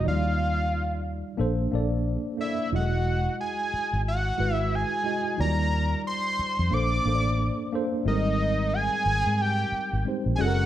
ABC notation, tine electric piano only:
X:1
M:4/4
L:1/8
Q:"Swing 16ths" 1/4=90
K:Ebmix
V:1 name="Tine electric piano"
[F,G,EF=d]4 [B,=D=Ac] [B,DAd]2 [B,DAd] | [^F,^G,=E^F^d]4 z [G,EF=B]2 [G,EFd] | [_G,=G,EF=d]4 [B,=D=Ac] [B,DAcd]2 [B,DAc] | [G,A,CEB]4 z2 [A,CEGc] [A,D_GA=AB] |]